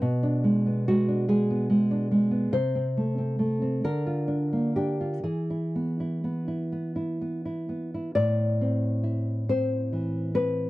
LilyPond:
\new Staff \with { instrumentName = "Nylon-string guitar" } { \time 6/8 \key a \minor \tempo 4. = 46 << { b'4 fis'8 gis'4. | c''4. bes'4 g'8 | gis'4. r4. | d''4. c''4 b'8 | } \\ { b,16 d'16 gis16 b16 gis16 d'16 gis16 b16 gis16 d'16 gis16 b16 | c16 c'16 a16 c'16 a16 c'16 d16 f'16 d'16 bes16 d'16 f'16 | e16 e'16 b16 e'16 b16 e'16 b16 e'16 b16 e'16 b16 e'16 | a,8 c'8 e'8 c'8 e8 c'8 | } >> }